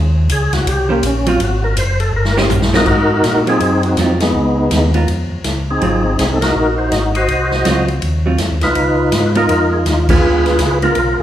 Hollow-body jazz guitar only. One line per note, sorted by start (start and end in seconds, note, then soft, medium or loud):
0.89 1.02 D#3 medium
0.89 1.02 C#4 medium
0.89 1.02 G4 medium
0.89 1.02 C5 medium
1.27 1.39 F#3 medium
1.27 1.39 C4 medium
1.27 1.39 F4 loud
2.37 2.49 D#3 medium
2.37 2.49 C#4 medium
2.37 2.49 G4 medium
2.37 2.50 C5 medium
2.73 2.86 F#3 medium
2.73 2.86 C4 medium
2.73 2.86 F4 medium
3.47 3.59 F#3 medium
3.47 3.59 C4 medium
3.47 3.60 F4 medium
3.98 4.19 F#3 soft
3.98 4.19 C4 soft
3.98 4.19 F4 medium
4.95 5.07 B3 medium
4.95 5.07 F4 medium
4.95 5.07 A#4 medium
5.82 6.02 F#3 medium
5.82 6.03 C4 medium
5.82 6.03 F4 medium
7.65 7.86 F#3 medium
7.65 7.86 C4 medium
7.65 7.87 F4 medium
8.26 8.38 F#3 soft
8.26 8.38 C4 medium
8.26 8.38 F4 medium
9.36 9.48 B3 medium
9.36 9.48 F4 medium
9.36 9.49 A#4 medium
10.09 10.57 D3 medium
10.09 10.57 G#3 medium
10.09 10.57 B3 medium
10.09 10.57 F4 medium
10.83 10.95 D3 medium
10.83 10.95 G#3 medium
10.83 10.95 B3 medium
10.83 10.96 F4 medium